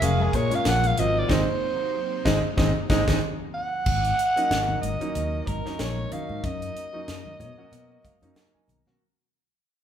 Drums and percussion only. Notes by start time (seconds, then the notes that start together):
0.02 closed hi-hat, high conga
0.19 high conga
0.33 kick, closed hi-hat
0.51 closed hi-hat, high conga
0.65 snare, closed hi-hat
0.84 closed hi-hat, high conga
0.98 closed hi-hat, low conga
1.29 kick, snare, low conga
2.26 kick, snare, low conga
2.58 kick, snare, low conga
2.90 kick, snare, low conga
3.08 kick, snare, low conga
3.86 kick, crash
4.05 closed hi-hat
4.19 closed hi-hat
4.37 closed hi-hat
4.51 snare, closed hi-hat
4.69 high conga, low conga
4.83 closed hi-hat, high conga, low conga
5.01 closed hi-hat
5.15 closed hi-hat
5.47 kick, closed hi-hat, high conga
5.66 snare
5.79 snare, closed hi-hat
5.98 high conga
6.12 closed hi-hat, low conga
6.29 high conga
6.44 kick, closed hi-hat
6.62 closed hi-hat
6.77 closed hi-hat
7.08 snare, closed hi-hat
7.26 high conga, low conga
7.40 closed hi-hat, high conga, low conga
7.73 closed hi-hat
8.05 kick, closed hi-hat, high conga
8.23 closed hi-hat
8.36 snare, closed hi-hat
8.55 high conga
8.69 closed hi-hat, low conga
8.87 snare, high conga